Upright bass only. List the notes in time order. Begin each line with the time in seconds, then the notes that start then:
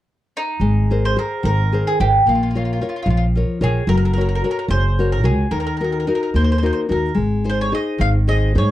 0.60 G#1
1.44 G#1
2.00 G#1
2.26 A#1
3.06 A#1
3.61 A#1
3.87 F#1
4.68 F#1
5.25 C#2
5.51 D#2
6.34 D#2
6.90 D#2
7.17 G#1
8.00 G#1
8.55 G#2